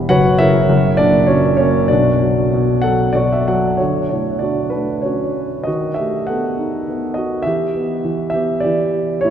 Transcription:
0.00 0.12 E1 medium
0.00 0.12 E2 medium
0.00 0.12 B2 medium
0.00 0.12 E3 medium
0.00 0.11 G3 medium
0.00 0.12 B3 medium
0.00 0.10 B4 medium
0.00 0.12 E5 medium
0.00 0.12 G5 medium
0.00 0.11 B5 medium
0.09 0.65 F#1 medium
0.09 0.68 F#2 medium
0.09 0.38 F#4 medium
0.09 0.38 B4 medium
0.09 0.38 C#5 medium
0.09 0.40 F#5 loud
0.38 0.69 C#3 medium
0.38 0.95 E4 medium
0.38 0.95 A#4 medium
0.38 0.95 C#5 medium
0.38 1.00 E5 loud
0.69 1.86 F#1 medium
0.69 1.86 F#2 medium
0.97 1.87 A#2 medium
0.97 1.27 D4 medium
0.97 1.29 D5 loud
1.27 1.88 F#3 medium
1.27 1.57 C#4 medium
1.27 1.55 C#5 medium
1.57 1.90 A#3 medium
1.57 1.88 C#4 medium
1.57 1.90 C#5 medium
1.88 3.76 B1 medium
1.88 2.52 B2 medium
1.88 3.11 D4 medium
1.88 3.11 F#4 medium
1.88 3.10 D5 medium
2.23 2.83 F#3 medium
2.53 3.14 B2 medium
2.82 3.47 F#3 medium
2.82 3.13 A4 medium
2.82 3.12 F#5 medium
3.13 3.78 B2 medium
3.13 3.76 F#4 medium
3.13 3.15 D5 medium
3.13 3.31 D5 medium
3.32 3.47 E5 medium
3.48 3.79 F#3 medium
3.48 3.77 F#5 medium
3.77 5.64 D3 soft
3.77 4.09 F#4 soft
3.77 4.08 C#5 medium
4.09 4.73 A3 soft
4.09 4.40 E4 soft
4.09 4.42 C#5 medium
4.39 4.71 F#4 medium
4.39 4.73 D5 medium
4.44 4.71 D4 soft
4.70 5.02 D4 soft
4.70 5.01 B4 medium
4.75 5.65 A3 soft
5.02 5.66 C#4 soft
5.02 5.64 F#4 soft
5.02 5.68 C#5 medium
5.64 7.41 D#3 medium
5.64 5.96 F#4 medium
5.64 5.97 D#5 medium
5.94 6.26 G4 soft
5.94 6.28 E5 medium
5.99 7.13 A3 soft
6.27 6.87 B3 soft
6.27 7.13 A4 medium
6.27 7.12 F#5 medium
6.59 7.43 D#4 soft
6.88 7.44 B3 soft
7.14 7.44 F#4 medium
7.14 7.45 D#5 medium
7.42 8.03 E3 medium
7.42 8.28 E5 medium
7.47 8.31 G4 medium
7.75 8.33 B3 soft
8.04 8.63 E3 soft
8.30 8.61 G4 medium
8.30 8.63 E5 medium
8.34 9.21 B3 soft
8.60 9.20 G4 medium
8.60 9.24 D5 medium
8.65 9.23 E3 soft
9.21 9.30 A2 medium
9.21 9.30 E4 medium
9.21 9.30 C#5 medium

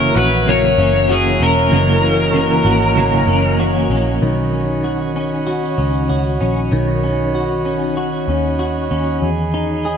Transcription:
0.00 0.12 F#1 loud
0.00 0.15 C#3 medium
0.00 0.16 E3 medium
0.00 1.71 E3 medium
0.00 0.17 A#3 medium
0.00 0.46 A#3 medium
0.00 0.13 C#4 medium
0.00 0.78 C#4 medium
0.00 0.16 F#4 medium
0.00 4.18 F#4 medium
0.00 0.15 A#4 loud
0.00 4.18 C#5 medium
0.00 1.70 E5 medium
0.00 4.18 A#5 medium
0.00 2.04 C#6 medium
0.14 0.75 A#1 medium
0.14 0.46 C#4 medium
0.14 1.09 F#4 medium
0.14 0.49 B4 loud
0.19 0.46 E3 soft
0.46 0.78 F#2 medium
0.46 0.78 C#3 medium
0.46 0.79 E3 medium
0.46 2.02 A#3 medium
0.46 0.78 A#3 medium
0.46 0.75 C#4 medium
0.46 1.12 C#5 loud
0.77 1.38 F#1 loud
0.77 1.10 A#3 medium
0.77 1.09 C#4 medium
0.77 1.41 C#4 medium
0.82 1.08 E3 soft
1.08 1.40 C#3 medium
1.08 1.41 E3 medium
1.08 1.41 A#3 medium
1.08 2.65 F#4 medium
1.08 1.42 G#4 medium
1.13 1.38 C#4 medium
1.39 1.70 E1 medium
1.39 1.72 A#3 medium
1.39 1.71 C#4 medium
1.39 2.34 C#4 medium
1.39 3.57 A#4 loud
1.45 1.71 E3 soft
1.71 2.62 F#1 medium
1.71 2.03 F#2 medium
1.71 2.03 C#3 medium
1.71 4.22 E3 medium
1.71 2.04 E3 medium
1.71 2.03 A#3 medium
1.71 2.00 C#4 medium
1.71 4.20 D#5 medium
2.03 2.34 E3 soft
2.03 2.96 A#3 medium
2.03 2.35 A#3 soft
2.31 2.65 C#3 medium
2.31 2.66 E3 medium
2.31 3.28 C#4 medium
2.31 4.36 C#6 medium
2.37 2.66 A#3 medium
2.37 2.62 C#4 medium
2.64 3.25 G#1 medium
2.64 2.98 A#3 medium
2.64 2.96 C#4 medium
2.64 3.59 F#4 medium
2.69 2.97 E3 medium
2.96 3.28 F#2 medium
2.96 3.28 C#3 medium
2.96 3.29 E3 medium
2.96 4.28 A#3 medium
2.96 3.28 A#3 medium
2.96 3.25 C#4 loud
3.27 3.87 F#1 medium
3.27 3.60 A#3 medium
3.27 3.90 C#4 medium
3.32 3.59 E3 medium
3.58 3.90 C#3 medium
3.58 3.91 E3 medium
3.58 3.91 A#3 medium
3.58 4.84 F#4 medium
3.63 3.88 C#4 medium
3.89 4.20 A#1 medium
3.89 4.23 A#3 medium
3.89 4.21 C#4 medium
3.89 4.53 C#4 medium
3.95 4.24 E3 soft
4.21 5.74 B1 medium
4.21 6.72 D#3 medium
4.21 9.18 F#4 medium
4.21 9.18 C#5 soft
4.21 9.97 D#5 soft
4.21 9.97 B5 medium
4.53 5.15 C#4 soft
4.84 5.45 F#4 soft
5.16 5.77 C#4 medium
5.47 6.08 F#4 medium
5.78 6.08 C#2 medium
5.78 6.40 C#4 soft
6.09 6.39 C#2 medium
6.09 7.34 F#4 medium
6.41 6.71 A#1 medium
6.41 7.02 C#4 soft
6.72 8.24 B1 medium
6.72 9.97 D#3 medium
7.03 7.64 C#4 medium
7.35 7.96 F#4 medium
7.65 8.27 C#4 medium
7.97 8.58 F#4 medium
8.28 8.88 D#2 medium
8.28 8.90 C#4 medium
8.59 9.28 F#4 medium
8.91 9.21 D#2 medium
8.91 9.28 C#4 medium
9.22 9.97 E2 medium
9.22 9.97 G#4 medium
9.22 9.97 G#5 medium
9.54 9.97 D#4 medium
9.85 9.97 G#4 medium

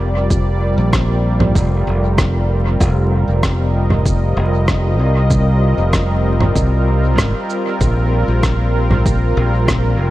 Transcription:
0.00 0.75 F1 medium
0.00 10.10 G3 medium
0.00 10.10 C4 medium
0.00 10.10 F4 medium
0.00 10.10 A#4 medium
0.00 2.81 D5 medium
0.30 kick loud
0.30 shaker medium
0.78 1.53 A#1 medium
0.93 kick loud
0.93 cross-stick medium
0.93 shaker medium
1.40 low conga medium
1.55 1.83 F1 loud
1.55 kick loud
1.55 shaker medium
1.87 2.78 F1 medium
2.18 kick loud
2.18 cross-stick medium
2.18 shaker medium
2.80 3.25 F1 loud
2.80 kick loud
2.80 shaker medium
3.28 4.34 F1 medium
3.43 kick loud
3.43 cross-stick medium
3.43 shaker medium
3.59 7.81 D#5 medium
3.90 low conga medium
4.06 kick loud
4.06 shaker medium
4.37 4.99 F1 loud
4.68 kick loud
4.68 cross-stick medium
4.68 shaker medium
4.99 5.75 C2 medium
5.30 kick loud
5.30 shaker soft
5.78 6.53 F1 medium
5.93 kick loud
5.93 cross-stick medium
5.93 shaker soft
6.41 low conga medium
6.56 7.18 C2 loud
6.56 kick loud
6.56 shaker medium
7.18 7.32 G#1 medium
7.18 kick loud
7.18 cross-stick medium
7.18 shaker medium
7.50 shaker soft
7.81 8.25 A#1 loud
7.81 kick loud
7.81 shaker soft
8.28 9.34 A#1 medium
8.43 kick loud
8.43 cross-stick medium
8.43 shaker soft
8.91 low conga medium
9.06 kick loud
9.06 shaker medium
9.37 9.99 A#1 loud
9.68 kick loud
9.68 cross-stick medium
9.68 shaker medium
9.99 10.10 F1 medium
10.05 10.10 D5 medium

